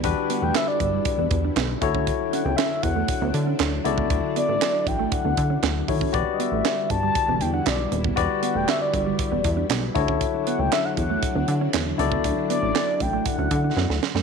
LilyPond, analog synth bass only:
\new Staff \with { instrumentName = "Analog synth bass" } { \clef bass \time 4/4 \key d \major \tempo 4 = 118 e,,16 r8 e,,16 r8 g,,8 r16 e,,16 e,8 b,,8 d,8~ | d,16 r8 cis,16 r8 e,8 r16 d,16 d8 d,8 cis,8 | d,16 r8 a,,16 r8 a,,8 r16 d,16 d8 d,8 dis,8 | e,,16 r8 a,,16 r8 g,,8 r16 e,,16 e,8 b,,8 dis,,8 |
e,,16 r8 e,,16 r8 g,,8 r16 e,,16 e,8 b,,8 d,8~ | d,16 r8 cis,16 r8 e,8 r16 d,16 d8 e,8 cis,8 | d,16 r8 a,,16 r8 a,,8 r16 d,16 d8 fis,16 d,16 r16 fis,16 | }